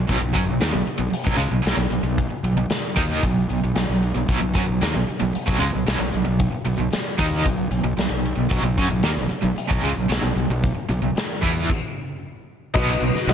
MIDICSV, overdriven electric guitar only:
0, 0, Header, 1, 3, 480
1, 0, Start_track
1, 0, Key_signature, 5, "major"
1, 0, Tempo, 527704
1, 77, Time_signature, 4, 2, 24, 8
1, 12131, End_track
2, 0, Start_track
2, 0, Title_t, "Overdriven electric guitar"
2, 0, Program_c, 0, 29
2, 69, Note_on_c, 0, 47, 88
2, 76, Note_on_c, 0, 54, 90
2, 185, Note_off_c, 0, 47, 0
2, 188, Note_off_c, 0, 54, 0
2, 204, Note_on_c, 0, 47, 58
2, 206, Note_on_c, 0, 54, 72
2, 293, Note_off_c, 0, 54, 0
2, 300, Note_off_c, 0, 47, 0
2, 304, Note_on_c, 0, 54, 80
2, 315, Note_on_c, 0, 61, 87
2, 416, Note_off_c, 0, 54, 0
2, 420, Note_on_c, 0, 47, 62
2, 423, Note_off_c, 0, 61, 0
2, 427, Note_on_c, 0, 54, 69
2, 546, Note_off_c, 0, 47, 0
2, 550, Note_off_c, 0, 54, 0
2, 551, Note_on_c, 0, 51, 86
2, 559, Note_on_c, 0, 58, 90
2, 656, Note_off_c, 0, 51, 0
2, 660, Note_on_c, 0, 47, 64
2, 663, Note_off_c, 0, 58, 0
2, 667, Note_on_c, 0, 54, 60
2, 774, Note_off_c, 0, 47, 0
2, 789, Note_off_c, 0, 54, 0
2, 891, Note_on_c, 0, 47, 64
2, 893, Note_on_c, 0, 54, 66
2, 992, Note_off_c, 0, 47, 0
2, 1021, Note_off_c, 0, 54, 0
2, 1128, Note_on_c, 0, 47, 70
2, 1135, Note_on_c, 0, 54, 90
2, 1240, Note_off_c, 0, 47, 0
2, 1244, Note_on_c, 0, 49, 87
2, 1248, Note_off_c, 0, 54, 0
2, 1252, Note_on_c, 0, 56, 97
2, 1368, Note_off_c, 0, 49, 0
2, 1372, Note_off_c, 0, 56, 0
2, 1376, Note_on_c, 0, 47, 52
2, 1376, Note_on_c, 0, 54, 59
2, 1466, Note_off_c, 0, 47, 0
2, 1472, Note_off_c, 0, 54, 0
2, 1477, Note_on_c, 0, 47, 80
2, 1483, Note_on_c, 0, 54, 81
2, 1600, Note_off_c, 0, 47, 0
2, 1603, Note_off_c, 0, 54, 0
2, 1611, Note_on_c, 0, 47, 59
2, 1614, Note_on_c, 0, 54, 66
2, 1720, Note_off_c, 0, 47, 0
2, 1724, Note_off_c, 0, 54, 0
2, 1731, Note_on_c, 0, 47, 51
2, 1735, Note_on_c, 0, 54, 66
2, 1840, Note_off_c, 0, 54, 0
2, 1842, Note_off_c, 0, 47, 0
2, 1851, Note_on_c, 0, 54, 67
2, 1853, Note_on_c, 0, 47, 61
2, 2049, Note_off_c, 0, 54, 0
2, 2050, Note_off_c, 0, 47, 0
2, 2223, Note_on_c, 0, 47, 59
2, 2224, Note_on_c, 0, 54, 72
2, 2326, Note_off_c, 0, 47, 0
2, 2332, Note_off_c, 0, 54, 0
2, 2337, Note_on_c, 0, 47, 52
2, 2343, Note_on_c, 0, 54, 70
2, 2451, Note_off_c, 0, 47, 0
2, 2463, Note_off_c, 0, 54, 0
2, 2693, Note_on_c, 0, 51, 94
2, 2700, Note_on_c, 0, 58, 87
2, 2703, Note_on_c, 0, 63, 93
2, 2930, Note_off_c, 0, 51, 0
2, 2934, Note_off_c, 0, 58, 0
2, 2935, Note_off_c, 0, 63, 0
2, 2948, Note_on_c, 0, 47, 61
2, 2948, Note_on_c, 0, 54, 66
2, 3137, Note_off_c, 0, 47, 0
2, 3137, Note_off_c, 0, 54, 0
2, 3175, Note_on_c, 0, 47, 58
2, 3178, Note_on_c, 0, 54, 64
2, 3298, Note_off_c, 0, 47, 0
2, 3300, Note_off_c, 0, 54, 0
2, 3309, Note_on_c, 0, 47, 57
2, 3312, Note_on_c, 0, 54, 64
2, 3411, Note_off_c, 0, 47, 0
2, 3414, Note_off_c, 0, 54, 0
2, 3422, Note_on_c, 0, 47, 58
2, 3425, Note_on_c, 0, 54, 64
2, 3526, Note_off_c, 0, 47, 0
2, 3526, Note_off_c, 0, 54, 0
2, 3537, Note_on_c, 0, 47, 56
2, 3537, Note_on_c, 0, 54, 63
2, 3731, Note_off_c, 0, 47, 0
2, 3731, Note_off_c, 0, 54, 0
2, 3772, Note_on_c, 0, 47, 59
2, 3775, Note_on_c, 0, 54, 57
2, 3886, Note_off_c, 0, 47, 0
2, 3894, Note_off_c, 0, 54, 0
2, 3897, Note_on_c, 0, 47, 89
2, 3905, Note_on_c, 0, 54, 96
2, 3999, Note_off_c, 0, 47, 0
2, 4003, Note_off_c, 0, 54, 0
2, 4010, Note_on_c, 0, 47, 67
2, 4014, Note_on_c, 0, 54, 61
2, 4115, Note_off_c, 0, 54, 0
2, 4122, Note_off_c, 0, 47, 0
2, 4126, Note_on_c, 0, 54, 81
2, 4137, Note_on_c, 0, 61, 84
2, 4241, Note_off_c, 0, 54, 0
2, 4247, Note_on_c, 0, 47, 55
2, 4248, Note_off_c, 0, 61, 0
2, 4252, Note_on_c, 0, 54, 60
2, 4372, Note_off_c, 0, 47, 0
2, 4376, Note_on_c, 0, 51, 90
2, 4377, Note_off_c, 0, 54, 0
2, 4385, Note_on_c, 0, 58, 85
2, 4491, Note_off_c, 0, 51, 0
2, 4494, Note_on_c, 0, 47, 65
2, 4496, Note_off_c, 0, 58, 0
2, 4503, Note_on_c, 0, 54, 57
2, 4608, Note_off_c, 0, 47, 0
2, 4622, Note_off_c, 0, 54, 0
2, 4727, Note_on_c, 0, 47, 63
2, 4734, Note_on_c, 0, 54, 74
2, 4838, Note_off_c, 0, 47, 0
2, 4857, Note_off_c, 0, 54, 0
2, 4968, Note_on_c, 0, 47, 76
2, 4978, Note_on_c, 0, 54, 96
2, 5078, Note_off_c, 0, 47, 0
2, 5081, Note_on_c, 0, 49, 79
2, 5086, Note_off_c, 0, 54, 0
2, 5089, Note_on_c, 0, 56, 93
2, 5200, Note_off_c, 0, 49, 0
2, 5204, Note_on_c, 0, 47, 58
2, 5207, Note_off_c, 0, 56, 0
2, 5211, Note_on_c, 0, 54, 56
2, 5326, Note_off_c, 0, 47, 0
2, 5328, Note_off_c, 0, 54, 0
2, 5337, Note_on_c, 0, 47, 90
2, 5339, Note_on_c, 0, 54, 77
2, 5444, Note_off_c, 0, 47, 0
2, 5447, Note_off_c, 0, 54, 0
2, 5455, Note_on_c, 0, 47, 51
2, 5458, Note_on_c, 0, 54, 64
2, 5560, Note_off_c, 0, 47, 0
2, 5566, Note_off_c, 0, 54, 0
2, 5571, Note_on_c, 0, 47, 58
2, 5577, Note_on_c, 0, 54, 64
2, 5674, Note_off_c, 0, 54, 0
2, 5675, Note_off_c, 0, 47, 0
2, 5685, Note_on_c, 0, 54, 64
2, 5686, Note_on_c, 0, 47, 63
2, 5885, Note_off_c, 0, 54, 0
2, 5886, Note_off_c, 0, 47, 0
2, 6049, Note_on_c, 0, 47, 63
2, 6052, Note_on_c, 0, 54, 71
2, 6146, Note_off_c, 0, 47, 0
2, 6154, Note_off_c, 0, 54, 0
2, 6157, Note_on_c, 0, 47, 61
2, 6165, Note_on_c, 0, 54, 56
2, 6277, Note_off_c, 0, 47, 0
2, 6294, Note_off_c, 0, 54, 0
2, 6533, Note_on_c, 0, 51, 84
2, 6535, Note_on_c, 0, 58, 90
2, 6535, Note_on_c, 0, 63, 100
2, 6771, Note_off_c, 0, 51, 0
2, 6772, Note_off_c, 0, 58, 0
2, 6772, Note_off_c, 0, 63, 0
2, 6774, Note_on_c, 0, 47, 59
2, 6776, Note_on_c, 0, 54, 69
2, 6971, Note_off_c, 0, 47, 0
2, 6972, Note_off_c, 0, 54, 0
2, 7015, Note_on_c, 0, 47, 60
2, 7017, Note_on_c, 0, 54, 63
2, 7118, Note_off_c, 0, 47, 0
2, 7122, Note_off_c, 0, 54, 0
2, 7129, Note_on_c, 0, 47, 51
2, 7133, Note_on_c, 0, 54, 59
2, 7241, Note_off_c, 0, 47, 0
2, 7241, Note_off_c, 0, 54, 0
2, 7252, Note_on_c, 0, 47, 61
2, 7252, Note_on_c, 0, 54, 68
2, 7350, Note_off_c, 0, 47, 0
2, 7354, Note_off_c, 0, 54, 0
2, 7361, Note_on_c, 0, 47, 60
2, 7365, Note_on_c, 0, 54, 59
2, 7565, Note_off_c, 0, 47, 0
2, 7567, Note_off_c, 0, 54, 0
2, 7601, Note_on_c, 0, 47, 59
2, 7604, Note_on_c, 0, 54, 63
2, 7714, Note_off_c, 0, 47, 0
2, 7723, Note_off_c, 0, 54, 0
2, 7725, Note_on_c, 0, 47, 82
2, 7734, Note_on_c, 0, 54, 98
2, 7848, Note_off_c, 0, 47, 0
2, 7852, Note_off_c, 0, 54, 0
2, 7859, Note_on_c, 0, 47, 62
2, 7863, Note_on_c, 0, 54, 68
2, 7972, Note_off_c, 0, 54, 0
2, 7979, Note_off_c, 0, 47, 0
2, 7983, Note_on_c, 0, 54, 74
2, 7988, Note_on_c, 0, 61, 97
2, 8088, Note_off_c, 0, 54, 0
2, 8095, Note_off_c, 0, 61, 0
2, 8099, Note_on_c, 0, 54, 65
2, 8101, Note_on_c, 0, 47, 60
2, 8221, Note_off_c, 0, 47, 0
2, 8223, Note_off_c, 0, 54, 0
2, 8224, Note_on_c, 0, 51, 84
2, 8229, Note_on_c, 0, 58, 91
2, 8329, Note_off_c, 0, 51, 0
2, 8331, Note_off_c, 0, 58, 0
2, 8332, Note_on_c, 0, 47, 64
2, 8335, Note_on_c, 0, 54, 60
2, 8449, Note_off_c, 0, 47, 0
2, 8461, Note_off_c, 0, 54, 0
2, 8571, Note_on_c, 0, 47, 67
2, 8578, Note_on_c, 0, 54, 72
2, 8689, Note_off_c, 0, 47, 0
2, 8703, Note_off_c, 0, 54, 0
2, 8816, Note_on_c, 0, 47, 88
2, 8824, Note_on_c, 0, 54, 86
2, 8934, Note_off_c, 0, 47, 0
2, 8939, Note_off_c, 0, 54, 0
2, 8941, Note_on_c, 0, 49, 94
2, 8950, Note_on_c, 0, 56, 82
2, 9057, Note_off_c, 0, 49, 0
2, 9062, Note_off_c, 0, 56, 0
2, 9063, Note_on_c, 0, 47, 59
2, 9068, Note_on_c, 0, 54, 60
2, 9169, Note_off_c, 0, 47, 0
2, 9176, Note_off_c, 0, 54, 0
2, 9180, Note_on_c, 0, 47, 88
2, 9187, Note_on_c, 0, 54, 92
2, 9293, Note_off_c, 0, 47, 0
2, 9297, Note_off_c, 0, 54, 0
2, 9304, Note_on_c, 0, 47, 55
2, 9308, Note_on_c, 0, 54, 62
2, 9410, Note_off_c, 0, 47, 0
2, 9417, Note_off_c, 0, 54, 0
2, 9421, Note_on_c, 0, 47, 59
2, 9428, Note_on_c, 0, 54, 62
2, 9543, Note_off_c, 0, 47, 0
2, 9548, Note_off_c, 0, 54, 0
2, 9554, Note_on_c, 0, 47, 60
2, 9561, Note_on_c, 0, 54, 72
2, 9744, Note_off_c, 0, 47, 0
2, 9747, Note_off_c, 0, 54, 0
2, 9905, Note_on_c, 0, 47, 53
2, 9916, Note_on_c, 0, 54, 66
2, 10013, Note_off_c, 0, 47, 0
2, 10014, Note_off_c, 0, 54, 0
2, 10024, Note_on_c, 0, 47, 64
2, 10025, Note_on_c, 0, 54, 59
2, 10142, Note_off_c, 0, 47, 0
2, 10148, Note_off_c, 0, 54, 0
2, 10384, Note_on_c, 0, 52, 84
2, 10395, Note_on_c, 0, 59, 89
2, 10396, Note_on_c, 0, 64, 97
2, 10621, Note_off_c, 0, 52, 0
2, 10626, Note_off_c, 0, 59, 0
2, 10627, Note_off_c, 0, 64, 0
2, 11590, Note_on_c, 0, 47, 91
2, 11592, Note_on_c, 0, 54, 93
2, 11600, Note_on_c, 0, 59, 102
2, 11825, Note_off_c, 0, 47, 0
2, 11826, Note_off_c, 0, 54, 0
2, 11830, Note_off_c, 0, 59, 0
2, 11838, Note_on_c, 0, 47, 60
2, 11839, Note_on_c, 0, 54, 73
2, 11949, Note_off_c, 0, 47, 0
2, 11957, Note_off_c, 0, 54, 0
2, 12085, Note_on_c, 0, 47, 67
2, 12091, Note_on_c, 0, 54, 74
2, 12131, Note_off_c, 0, 47, 0
2, 12131, Note_off_c, 0, 54, 0
2, 12131, End_track
3, 0, Start_track
3, 0, Title_t, "Muted overdriven electric guitar strokes"
3, 785, Note_on_c, 9, 29, 58
3, 876, Note_off_c, 9, 29, 0
3, 1003, Note_on_c, 9, 29, 58
3, 1094, Note_off_c, 9, 29, 0
3, 2097, Note_on_c, 9, 29, 52
3, 2188, Note_off_c, 9, 29, 0
3, 2462, Note_on_c, 9, 29, 62
3, 2553, Note_off_c, 9, 29, 0
3, 4619, Note_on_c, 9, 29, 62
3, 4710, Note_off_c, 9, 29, 0
3, 4849, Note_on_c, 9, 29, 54
3, 4940, Note_off_c, 9, 29, 0
3, 5932, Note_on_c, 9, 29, 54
3, 6023, Note_off_c, 9, 29, 0
3, 6288, Note_on_c, 9, 29, 57
3, 6379, Note_off_c, 9, 29, 0
3, 8460, Note_on_c, 9, 29, 56
3, 8551, Note_off_c, 9, 29, 0
3, 8700, Note_on_c, 9, 29, 53
3, 8790, Note_off_c, 9, 29, 0
3, 9781, Note_on_c, 9, 29, 58
3, 9872, Note_off_c, 9, 29, 0
3, 10153, Note_on_c, 9, 29, 57
3, 10244, Note_off_c, 9, 29, 0
3, 11960, Note_on_c, 9, 29, 54
3, 12051, Note_off_c, 9, 29, 0
3, 12131, End_track
0, 0, End_of_file